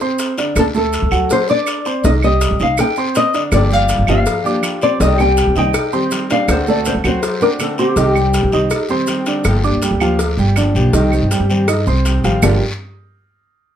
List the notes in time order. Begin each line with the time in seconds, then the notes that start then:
0.01 C4 C5 C6, maracas
0.18 cowbell, short guiro, maracas
0.38 D3 D4 D5, cowbell, short guiro, maracas
0.55 D2 A4, cowbell, long guiro, claves, maracas
0.74 A3 A4 A5, maracas
0.93 cowbell, short guiro, maracas
1.02 D2
1.11 D2 F#3 F#4 F#5, short guiro, claves, maracas
1.29 C5, cowbell, long guiro, maracas
1.49 D4 D5 D6, maracas
1.67 cowbell, short guiro, claves, maracas
1.85 C4 C5 C6, short guiro, maracas
2.04 C2 D#3 D#4 D#5, cowbell, long guiro, maracas
2.22 G3 G4 D#5 G5, claves, maracas
2.41 cowbell, short guiro, maracas
2.51 C2
2.59 C2 D#4 D#5 F5 D#6, short guiro, maracas
2.77 G5, cowbell, long guiro, claves, maracas
2.96 C4 C5 C6, maracas
3.15 D#5, cowbell, short guiro, maracas
3.34 D3 D4 D5, cowbell, short guiro, maracas
3.52 G1 D3 F3 A#3 D4 G4 D5, cowbell, long guiro, claves, maracas
3.70 G3 G4 F5 G5, maracas
3.88 cowbell, short guiro, maracas
3.98 G1
4.07 G1 F3 A#3 D4 F4 G4 F5, short guiro, claves, maracas
4.26 muted steel-string acoustic guitar stroke, cowbell, long guiro, maracas
4.44 F3 A#3 D4 G4 D5 D6, maracas
4.62 F3 A#3 D4 G4, cowbell, short guiro, claves, maracas
4.81 C4 C5 D5 C6, short guiro, maracas
4.99 C2 C3 D#3 G3 C4 D#4 G4 D#5, cowbell, long guiro, maracas
5.18 G3 G4 G5, claves, maracas
5.37 cowbell, short guiro, maracas
5.47 C2
5.55 C2 D#3 G3 C4 D#4 G4 D#5 G5 D#6, short guiro, maracas
5.74 muted steel-string acoustic guitar stroke, cowbell, long guiro, claves, maracas
5.92 D#3 G3 C4 G4 C5 C6, maracas
6.11 D#3 G3 C4 G4, cowbell, short guiro, maracas
6.30 D4 D5 F5, cowbell, short guiro, maracas
6.48 D2 D3 A3 C4 F#4 C5, cowbell, long guiro, claves, maracas
6.67 A3 A4 D5 A5, maracas
6.85 C5, cowbell, short guiro, maracas
6.95 D2
7.04 D2 F#3 A3 C4 F#4 C5 F#5, short guiro, claves, maracas
7.22 muted steel-string acoustic guitar stroke, cowbell, long guiro, maracas
7.40 A3 C4 D4 F#4 A#4 D5 D6, maracas
7.59 D3 A3 C4 F#4 A4, cowbell, short guiro, claves, maracas
7.78 C4 G4 C5 C6, short guiro, maracas
7.96 C2 C3 D#3 G3 C4 D#4 G4 D#5, cowbell, long guiro, maracas
8.15 G3 G4 G5, claves, maracas
8.34 cowbell, short guiro, maracas
8.43 C2
8.52 C2 D#3 G3 C4 D#4 G4 D#5 D#6, short guiro, maracas
8.70 muted steel-string acoustic guitar stroke, cowbell, long guiro, claves, maracas
8.89 D#3 G3 C4 G4 C5 C6, maracas
9.07 D#3 G3 C4 G4, cowbell, short guiro, maracas
9.26 D3 D4 D5, cowbell, short guiro, maracas
9.44 G1 D3 F3 A#3 D4 G4, cowbell, long guiro, claves, maracas
9.64 A#3 D4 G4 D5 D6, maracas
9.72 D2
9.82 G3 G4 G5, cowbell, short guiro, maracas
9.91 D2
10.00 F3 A#3 D4 F4 G4 F5, short guiro, claves, maracas
10.19 muted steel-string acoustic guitar stroke, cowbell, long guiro, maracas
10.37 G1 G3 G4 G5, maracas
10.56 D3 F3 A#3 D4 G4 D5, cowbell, short guiro, claves, maracas
10.75 B1 F3 A#3 D4 G4, short guiro, maracas
10.93 C2 C3 D#3 G3 C4 D#4 G4 D#5, cowbell, long guiro, maracas
11.11 G3 C4 G4, claves, maracas
11.21 G2
11.31 G3 G4 G5, cowbell, short guiro, maracas
11.40 G2
11.49 D#3 G3 C4 G4, short guiro, maracas
11.68 D#4 D#5 D#6, muted steel-string acoustic guitar stroke, cowbell, long guiro, claves, maracas
11.87 C2 C4 C5 C6, maracas
12.05 D#3 G3 C4 G4, cowbell, short guiro, maracas
12.23 A1 D#3 F3 G3 C4 F4 G4 F5, cowbell, short guiro, maracas
12.42 G1 G2 D3 F3 G3 A#3 D4 F4 G4 A#4 D5, low bongo, long guiro, claves, maracas